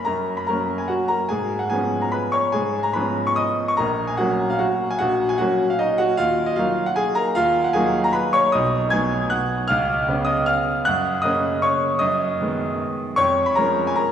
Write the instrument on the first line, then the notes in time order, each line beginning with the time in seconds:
grand piano
0.05 F#2 A#4 A#5
0.37 B5
0.47 F#3 A#3 C#4 A#4 A#5
0.78 G#5
0.88 F#4 F#5
1.08 A#4 A#5
1.29 G#2 G#4 G#5
1.59 F#5
1.70 F3 B3 C#4 G#4 G#5
2.01 A#5
2.12 B4 B5
2.32 C#5 C#6
2.52 G#2 G#4 G#5
2.83 A#5
2.93 F3 B3 C#4 B4 B5
3.27 C#6
3.36 D#5 D#6
3.68 C#6
3.77 A#1 A#4 A#5
4.07 G#5
4.17 F#3 A#3 C#4 F#4 F#5
4.50 F5
4.59 F#4 F#5
4.91 G#5
4.99 A#1 F#4 F#5
5.29 G#5
5.38 F#3 A#3 C#4 F#4 F#5
5.70 F5
5.79 D#4 D#5
5.98 F#4 F#5
6.17 D#2 F4 F5
6.46 D#5
6.56 F#3 A#3 D#4 F4 F5
6.86 F#5
6.96 G#4 G#5
7.15 A#4 A#5
7.35 D#2 F4 F5
7.64 F#5
7.73 F#3 A#3 D#4 G#4 G#5
8.04 A#5
8.13 B4 B5
8.33 C#5 C#6
8.52 B1 D#5 D#6
8.90 F#3 B3 D#4 G#5 G#6
9.30 F#5 F#6
9.68 C#2 F5 F6
10.08 C#3 B3 C#4
10.25 D#5 D#6
10.46 F5 F6
10.85 F#2 F#5 F#6
11.22 C#3 A#3 C#4 D#5 D#6
11.62 C#5 C#6
11.99 F#2 D#5 D#6
12.41 D#3 G#3 B3
13.16 F2 C#5 C#6
13.46 B5
13.55 F3 G#3 C#4 A#4 A#5
13.87 G#5
13.96 A#4 A#5